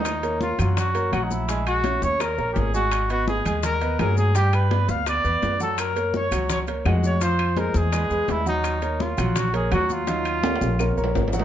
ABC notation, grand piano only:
X:1
M:4/4
L:1/8
Q:1/4=168
K:Ebm
V:1 name="Grand piano"
z [B,Bd]2 [G,Gg]2 [B,Bd] [G,Gg]2 | [A,Aa]2 [Dd_f]2 [B,Bd] [B,Bd]2 [A,Aa]- | [A,Aa] [Cce]2 [A,Aa]2 [Cce] [G,Aa]2 | [=G,=G=g]2 [=B,=B=d]2 [B,Bd] [B,Bd]2 [_G,_G_g]- |
[G,Gg] [B,Bd]2 [G,Gg]2 [B,Bd] [A,Gg]2 | [F,Ff]2 [A,A=c]2 [^G,^G=B] [G,GB]2 [^F,^F^f]- | [^F,^F^f] [B,Bd]2 [G,Gg]2 [B,Bd] [G,Gg]2 | [G,Ef]2 [B,Bd]2 [B,Bd] [B,Bd]2 [G,Gg] |]